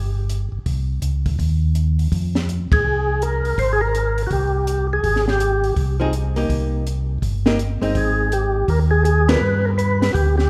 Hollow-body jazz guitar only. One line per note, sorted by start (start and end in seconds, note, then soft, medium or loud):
6.00 6.11 F3 medium
6.00 6.12 C4 medium
6.00 6.12 D#4 medium
6.00 6.12 G#4 medium
6.36 6.83 A#3 medium
6.36 6.84 D#4 medium
6.36 6.84 G4 medium
7.46 7.58 A#3 medium
7.46 7.58 D#4 medium
7.46 7.58 G4 medium
7.82 8.29 G#3 medium
7.82 8.29 C4 medium
7.82 8.29 D#4 medium
9.29 9.40 G3 medium
9.29 9.40 B3 medium
9.29 9.41 F4 medium
9.29 9.41 A#4 medium